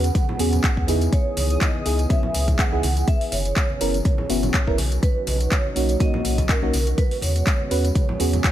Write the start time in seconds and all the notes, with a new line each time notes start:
Already playing: E2 B3 C#4 F#4 G#4 F#5
0.04 closed hi-hat, tambourine
0.15 kick, closed hi-hat, tambourine, high conga
0.29 low conga
0.39 E2 B3 C#4 F#4 G#4, open hi-hat, tambourine
0.53 closed hi-hat, tambourine, high conga, low conga
0.64 kick, clap, closed hi-hat, tambourine
0.77 E2, kick
0.87 E2 B3 D#4 E4 G#4, open hi-hat, tambourine, high conga
1.01 closed hi-hat, tambourine
1.13 E3 C#5 D#6, kick, closed hi-hat, tambourine
1.37 C#2, open hi-hat, tambourine, high conga
1.50 closed hi-hat, tambourine
1.61 D#5, kick, clap, closed hi-hat, tambourine
1.75 high conga
1.85 C#2 B3 D#4 E4 G#4, open hi-hat, tambourine
1.99 closed hi-hat, tambourine
2.09 B3 C#4 E4 G#4 E5, kick, closed hi-hat, tambourine, high conga
2.23 low conga
2.34 C#2, open hi-hat, tambourine
2.48 kick, closed hi-hat, tambourine, high conga, low conga
2.59 F#5, kick, clap, closed hi-hat, tambourine
2.72 C#2 B3 D#4 E4 G#4
2.83 C#2, open hi-hat, tambourine, high conga
2.97 closed hi-hat, tambourine
3.08 C#4 E5, kick, closed hi-hat, tambourine
3.21 open hi-hat
3.32 F#1 C#5, open hi-hat, tambourine, high conga
3.45 closed hi-hat, tambourine
3.56 kick, clap, closed hi-hat, tambourine
3.70 high conga
3.80 F#1 B3 C#4 E4 A#4, open hi-hat, tambourine
3.94 closed hi-hat, tambourine
4.05 kick, closed hi-hat, tambourine, high conga
4.18 low conga
4.29 F#1 B3 C#4 E4 F#4, open hi-hat, tambourine
4.43 closed hi-hat, tambourine, high conga, low conga
4.54 kick, clap, closed hi-hat
4.67 F#1 B3 C#4 E4 A#4, kick
4.78 B1 F#3 D#4 F#4, open hi-hat, tambourine, high conga
4.92 closed hi-hat, tambourine
5.03 B4, kick, closed hi-hat, tambourine
5.27 B1, open hi-hat, tambourine, high conga
5.40 closed hi-hat, tambourine
5.51 C#5, kick, clap, closed hi-hat, tambourine
5.65 high conga
5.75 B1 A#3 C#4 D#4 F#4, open hi-hat, tambourine
5.89 closed hi-hat, tambourine
6.00 A#3 C#4 D#4 F#4 D#5, kick, closed hi-hat, tambourine, high conga
6.14 low conga
6.25 B1, open hi-hat, tambourine
6.38 kick, closed hi-hat, tambourine, high conga, low conga
6.49 A#4, kick, clap, closed hi-hat, tambourine
6.62 B1 A#3 C#4 D#4 F#4
6.73 B1, open hi-hat, tambourine, high conga
6.87 closed hi-hat, tambourine
6.98 G#3 B3 C#4 B4, kick, closed hi-hat, tambourine
7.11 open hi-hat
7.22 E2 C#5, open hi-hat, tambourine, high conga
7.36 closed hi-hat, tambourine
7.47 kick, clap, closed hi-hat, tambourine
7.59 high conga
7.71 E2 B3 C#4 F#4 B4, open hi-hat, tambourine
7.85 closed hi-hat, tambourine
7.95 kick, closed hi-hat, tambourine, high conga
8.09 low conga
8.19 E2 B3 C#4 F#4 G#4, open hi-hat, tambourine
8.33 closed hi-hat, tambourine, high conga, low conga
8.44 kick, clap, closed hi-hat, tambourine